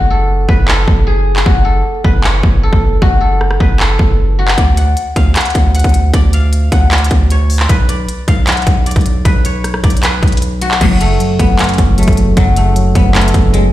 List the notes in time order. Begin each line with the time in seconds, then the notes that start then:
Already playing: F#1 F#4 B4 C#5
0.10 A4
0.49 F#1 B4, kick
0.68 A4, clap
0.88 F#1, kick
1.07 G#4
1.36 clap
1.46 F#1 F#4, kick
1.65 A4
2.04 F#1 B4, kick
2.24 C#5, clap
2.43 F#1, kick
2.63 A4
2.73 F#1, kick
3.02 F#1 F#4, kick
3.21 A4
3.41 cross-stick
3.51 cross-stick
3.60 F#1 B4, kick
3.79 A4, clap
3.99 F#1, kick
4.39 F#4
4.48 clap
4.58 D2 D5, kick, closed hi-hat
4.77 F#5, closed hi-hat
4.97 closed hi-hat
5.16 D2 F5, kick, closed hi-hat
5.36 F#5, clap, closed hi-hat
5.41 closed hi-hat
5.45 closed hi-hat
5.50 closed hi-hat
5.55 D2, kick, closed hi-hat
5.75 F#5, closed hi-hat
5.79 closed hi-hat
5.84 D2, kick, closed hi-hat
5.89 closed hi-hat
5.94 closed hi-hat
6.14 D2 D5, kick, closed hi-hat
6.33 F5, closed hi-hat
6.53 closed hi-hat
6.72 D2 F#5, kick, closed hi-hat
6.91 D5, clap, closed hi-hat
6.98 closed hi-hat
7.04 closed hi-hat
7.11 D2, kick, closed hi-hat
7.30 C#5, closed hi-hat
7.50 open hi-hat
7.60 clap
7.69 B1 B4, kick, closed hi-hat
7.89 D5, closed hi-hat
8.09 closed hi-hat
8.28 B1 F5, kick, closed hi-hat
8.47 F#5, clap, closed hi-hat
8.52 closed hi-hat
8.57 closed hi-hat
8.62 closed hi-hat
8.67 B1, kick, closed hi-hat
8.86 D5, closed hi-hat
8.91 closed hi-hat
8.96 B1, kick, closed hi-hat
9.01 closed hi-hat
9.06 closed hi-hat
9.25 B1 B4, kick, closed hi-hat
9.45 C#5, closed hi-hat
9.64 cross-stick, closed hi-hat
9.74 cross-stick
9.84 B1 D5, kick, closed hi-hat
9.90 closed hi-hat
9.97 closed hi-hat
10.03 B4, clap, closed hi-hat
10.23 B1, kick, closed hi-hat
10.28 closed hi-hat
10.32 closed hi-hat
10.37 closed hi-hat
10.42 closed hi-hat
10.62 F#4, closed hi-hat
10.71 clap
10.81 F#1 C#2 F#2 A2 F#3, kick, closed hi-hat, crash
11.00 C#3 A3, closed hi-hat
11.20 F#3, closed hi-hat
11.39 F#1 A3 B3, kick, closed hi-hat
11.58 C#4, clap, closed hi-hat
11.64 closed hi-hat
11.69 closed hi-hat
11.74 closed hi-hat
11.78 F#1, kick, closed hi-hat
11.98 F#3 A3, closed hi-hat
12.03 closed hi-hat
12.08 F#1, kick, closed hi-hat
12.13 closed hi-hat
12.17 C#3, closed hi-hat
12.37 F#1 F#2 F#3, kick, closed hi-hat
12.56 C#3 A3, closed hi-hat
12.76 F#3, closed hi-hat
12.95 F#1 A3 B3, kick, closed hi-hat
13.15 A3 C#4, clap, closed hi-hat
13.21 closed hi-hat
13.28 closed hi-hat
13.34 F#1, kick, closed hi-hat
13.53 F#3 G#3, closed hi-hat